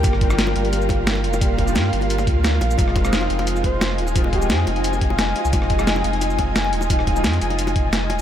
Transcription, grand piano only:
X:1
M:4/4
L:1/16
Q:1/4=175
K:Fdor
V:1 name="Grand piano"
[G,B,DFG]3 [G,B,DFG]12- [G,B,DFG] | [G,B,DFG]3 [G,B,DFG]12- [G,B,DFG] | [F,A,CEF]3 [F,A,CEF]12- [F,A,CEF] | [F,A,CEF]3 [F,A,CEF]12- [F,A,CEF] |
[F,A,CEF]3 [F,A,CEF]12- [F,A,CEF] | [F,A,CEF]3 [F,A,CEF]12- [F,A,CEF] |]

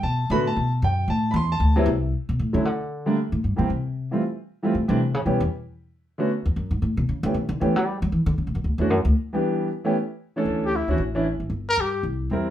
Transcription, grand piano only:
X:1
M:4/4
L:1/8
Q:"Swing" 1/4=230
K:Dmix
V:1 name="Grand piano"
a2 [D,A,B,Fb] a2 z g2 | a2 [bc'] a2 [C,F,B,E] z2 | [K:D] z3 [D,F,A,CE] z3 [D,G,A,_B,D] | z3 [E,G,_B,=CG] z3 [E,G,A,C=F] |
z3 [E,G,A,=C=F] z [E,G,A,CD] z2 | [E,G,B,CG] z6 [D,A,B,CF] | z6 z [E,A,B,CG] | z2 [E,A,B,CG] z4 z |
z3 [E,A,CDF] z3 [E,G,B,DG]- | [E,G,B,DG]2 z [E,A,B,CG] z3 [E,A,CDA]- | [E,A,CDA]2 z [E,CDF] z [E,CDE] z2 | z6 [G,=CE_B]2 |]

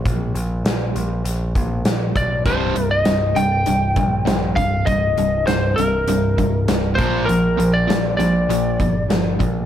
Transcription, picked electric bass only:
X:1
M:4/4
L:1/8
Q:1/4=100
K:Cm
V:1 name="Picked electric bass" clef=bass
B,,, B,,, B,,, B,,, B,,, B,,, B,,, =B,,, | C,,, C,,, C,,, C,,, C,,, B,,, B,,, C,,, | C,,, C,,, C,,, C,,, C,,, C,,, C,,, B,,, | B,,, B,,, B,,, B,,, B,,, G,,, G,,, B,,, |]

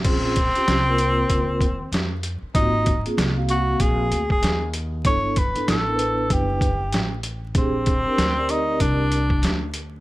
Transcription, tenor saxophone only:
X:1
M:4/4
L:1/16
Q:"Swing 16ths" 1/4=96
K:Ab
V:1 name="Tenor saxophone"
C12- C2 z2 | E4 z2 _G2 A3 A3 z2 | d2 =B2 =A4 G6 z2 | C6 E2 =D6 z2 |]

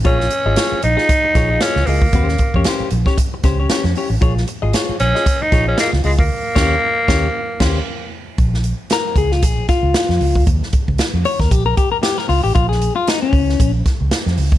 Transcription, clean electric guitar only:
X:1
M:4/4
L:1/16
Q:"Swing 16ths" 1/4=115
K:Bbdor
V:1 name="Clean electric guitar"
[FAd]2 z [FAe] [FAd]2 z [FAe] z2 [FAd] [FAe] [FAe]2 [FAe] z | [DGc]2 z [DGd] [DGc]2 z [DGd] z2 [DGc] [DGd] [DGd]2 [DGd] z | [FAd]2 z [FAe] [FAd]2 z [FAe] z2 [FAd] [FAe] [FAe]2 [FAe] z | z2 [DGd]2 z2 [DGd]2 z2 [DGc]2 z4 |
z4 B2 A F A2 F6 | z6 d B G B G B G B F G | F A2 F E D4 z6 z |]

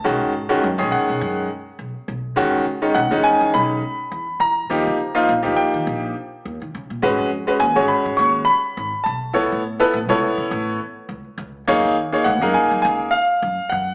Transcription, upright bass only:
X:1
M:4/4
L:1/16
Q:"Swing 16ths" 1/4=103
K:Ebm
V:1 name="Upright bass" clef=bass
=B,,, A,,2 z ^F,, B,,, z =B,, F,,2 z2 B,,, z B,,,2 | =E,, ^C,2 z =B,,, E,, z =E, B,,,2 z2 E,, z E,,2 | E,, D,2 z B,,, E,, z E, B,,,2 z2 E,, E, D, B,, | A,,, F,,2 z E,, A,,, z A,, E,,2 z2 A,,, z C,,2 |
^C,, =A,,2 z =A,,, C,, z ^C, A,,,2 z2 C,, z C,,2 | G,, E,2 z D,, G,, z G, D,,2 z2 G,, z G,,2 |]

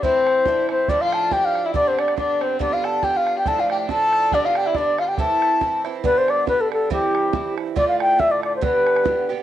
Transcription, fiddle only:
X:1
M:2/4
L:1/16
Q:"Swing" 1/4=140
K:Gmix
V:1 name="Fiddle"
C4 D2 C2 | D F3 G3 E | D C D2 D2 C2 | D F A2 G F2 G |
A F G2 A4 | D F G E D2 F G | A6 z2 | z8 |
z8 | z8 | z8 |]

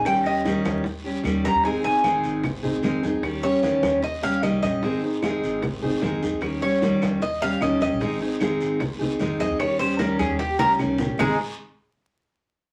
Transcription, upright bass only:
X:1
M:4/4
L:1/16
Q:1/4=151
K:Ab
V:1 name="Upright bass" clef=bass
E,,6 E,,6 E,,3 E,, | A,,,6 A,,,6 A,,,3 E,, | E,,6 E,,6 C,,2 B,,,2 | A,,,6 A,,,6 A,,,3 E,, |
E,,6 E,,6 E,,3 B,,, | A,,,6 A,,,6 A,,,3 E,, | E,,6 E,,4 D,,2 C,,2 B,,,2 | A,,,2 z12 z2 |]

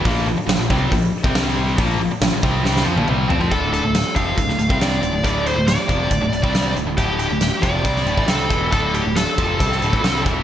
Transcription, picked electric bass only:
X:1
M:4/4
L:1/16
Q:1/4=138
K:Dm
V:1 name="Picked electric bass" clef=bass
B,,,2 B,,, z B,,, B,,, C,,2 B,,,2 z C,,4- C,, | B,,,2 B,,, z B,,, B,,, C,,2 C,,2 F,, B,,, C,,2 F,, F,, | D,,,3 D,,,2 z F,,,2 D,,, D,,, D,,, C,,3 D,,, D,,, | D,,,3 D,,,2 z F,,,2 D,,, D,,, D,,, C,,3 D,,, D,,, |
D,,,3 D,,,2 z F,,,2 C,,2 D,,, A,,, C,,2 E,,,2 | D,,,3 D,,,2 z F,,,2 C,,2 D,,, A,,, C,,2 E,,,2 |]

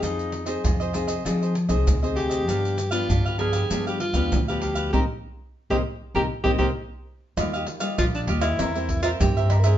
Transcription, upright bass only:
X:1
M:4/4
L:1/16
Q:1/4=98
K:Cm
V:1 name="Upright bass" clef=bass
F,,4 F,,4 F,3 C,, D,,4 | G,,4 G,,4 G,3 D,, D,,4 | C,, z4 C,, z2 C,, z C,, C,, z4 | [K:Eb] E,,2 z2 B,,,2 E,,2 =E,,4 G,,4 |]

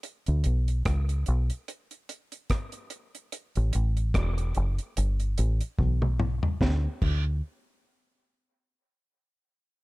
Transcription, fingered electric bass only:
X:1
M:4/4
L:1/16
Q:"Swing 16ths" 1/4=73
K:Amix
V:1 name="Fingered electric bass" clef=bass
z D,, B,,,2 C,,2 B,,, z8 z | z A,,, A,,,2 E,,,2 F,,, z G,,,2 A,,, z B,,,3 z | D,, z D,,2 z12 |]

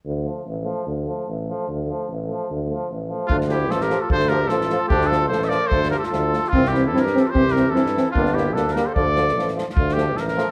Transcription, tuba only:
X:1
M:2/4
L:1/8
Q:1/4=148
K:Dm
V:1 name="Tuba" clef=bass
D,,2 A,,,2 | D,,2 A,,,2 | D,,2 A,,,2 | D,,2 A,,,2 |
D,,2 A,,,2 | D,,2 A,,,2 | D,,2 A,,,2 | D,,2 D,,2 |
C,,2 G,,2 | C,,2 G,,2 | G,,,2 D,,2 | D,,2 A,,,2 |
D,,2 A,,,2 |]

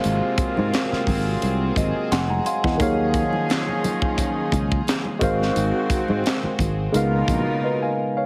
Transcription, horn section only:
X:1
M:4/4
L:1/8
Q:"Swing 16ths" 1/4=87
K:Abmix
V:1 name="Horn section"
[C,B,F]6- [C,B,F] z | [F,DA]6 z [E,CG]- | [E,CG]3 z [_C,B,F]3 z |]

